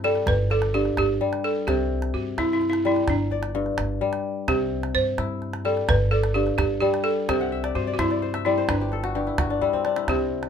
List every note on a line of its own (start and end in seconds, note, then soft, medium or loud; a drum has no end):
0.00 0.18 G2 medium
0.00 0.32 C3 medium
0.00 0.32 G3 medium
0.00 1.13 E4 medium
0.04 0.26 A4 medium
0.15 calabash click soft
0.26 0.88 G1 loud
0.26 0.52 B4 medium
0.26 calabash thump medium
0.26 calabash click medium
0.50 0.75 A4 loud
0.50 1.62 D5 medium
0.50 calabash click soft
0.62 calabash click soft
0.74 1.72 G2 medium
0.74 0.96 G4 medium
0.85 calabash click soft
0.97 1.18 G1 loud
0.97 1.46 G4 medium
0.97 calabash thump medium
0.97 calabash click medium
1.21 1.72 G3 medium
1.33 calabash click soft
1.44 1.66 A4 medium
1.67 2.09 C2 medium
1.67 3.13 C3 medium
1.67 2.15 G4 medium
1.67 calabash thump soft
1.67 calabash click soft
2.02 calabash click soft
2.14 2.35 G2 medium
2.14 2.24 F#4 medium
2.37 2.99 G2 medium
2.37 3.94 E4 medium
2.37 2.52 E4 medium
2.37 calabash thump medium
2.37 calabash click soft
2.53 2.68 E4 medium
2.61 calabash click soft
2.69 2.85 E4 medium
2.69 calabash click soft
2.85 3.13 G3 medium
2.85 3.10 E4 medium
2.96 calabash click soft
3.08 3.69 G1 loud
3.08 3.98 D4 medium
3.08 calabash thump medium
3.08 calabash click medium
3.31 4.42 D5 medium
3.31 calabash click soft
3.43 calabash click soft
3.55 4.53 G2 medium
3.66 calabash click soft
3.78 3.99 G1 medium
3.78 calabash thump medium
3.78 calabash click medium
4.01 4.53 G3 medium
4.13 calabash click soft
4.48 4.89 C2 medium
4.48 5.93 C3 medium
4.48 4.96 G4 loud
4.48 calabash thump medium
4.48 calabash click medium
4.83 calabash click soft
4.95 5.16 G2 medium
4.95 5.67 C5 medium
5.18 5.80 G2 medium
5.18 6.75 E4 medium
5.18 calabash thump medium
5.18 calabash click medium
5.42 calabash click soft
5.53 calabash click soft
5.65 5.93 G3 medium
5.65 5.87 A4 medium
5.77 calabash click soft
5.88 6.50 G1 loud
5.88 6.13 B4 medium
5.88 calabash thump medium
5.88 calabash click medium
6.11 6.36 A4 medium
6.11 7.23 D5 medium
6.11 calabash click soft
6.24 calabash click medium
6.34 7.33 G2 medium
6.34 6.57 G4 medium
6.47 calabash click soft
6.58 6.79 G1 medium
6.58 6.79 G4 medium
6.58 calabash thump medium
6.58 calabash click medium
6.80 7.33 G3 medium
6.80 7.05 G4 medium
6.94 calabash click soft
7.04 7.26 A4 medium
7.28 7.69 C2 medium
7.28 8.73 C3 medium
7.28 7.77 G4 medium
7.28 7.52 E5 medium
7.28 calabash thump medium
7.28 calabash click medium
7.41 8.37 F#5 medium
7.52 8.34 E5 medium
7.64 7.87 D5 medium
7.64 calabash click medium
7.75 7.96 G2 medium
7.75 7.92 F#4 medium
7.75 7.99 C5 medium
7.75 calabash click soft
7.87 8.10 D5 medium
7.94 8.00 F#4 medium
7.98 8.60 G2 medium
7.98 9.27 E4 medium
7.98 8.44 E4 medium
7.98 8.22 C5 medium
7.98 calabash thump medium
7.98 calabash click medium
8.10 8.45 D5 medium
8.10 calabash click soft
8.22 8.57 C5 medium
8.34 9.38 E5 medium
8.34 calabash click soft
8.45 8.73 G3 medium
8.45 8.69 E4 medium
8.45 9.56 D5 medium
8.58 9.76 C5 medium
8.68 9.30 G1 loud
8.68 9.58 D4 medium
8.68 9.79 B4 medium
8.68 calabash thump medium
8.68 calabash click medium
8.81 9.10 G4 medium
8.92 10.24 A4 medium
8.92 calabash click soft
9.04 9.38 F#4 medium
9.04 calabash click soft
9.15 10.13 G2 medium
9.15 9.45 G4 medium
9.27 9.61 E4 medium
9.27 calabash click soft
9.38 9.59 G1 loud
9.38 9.67 F#4 medium
9.38 calabash thump medium
9.38 calabash click medium
9.50 9.85 D4 medium
9.61 10.13 G3 medium
9.61 9.96 E4 medium
9.61 calabash thump soft
9.73 10.49 C4 medium
9.73 calabash thump soft
9.85 10.49 D4 medium
9.85 calabash click soft
9.96 10.49 E4 medium
9.96 calabash click medium
10.08 10.49 C2 medium
10.08 10.49 C3 medium
10.08 10.49 G4 medium
10.08 calabash thump medium
10.08 calabash click medium
10.43 calabash click soft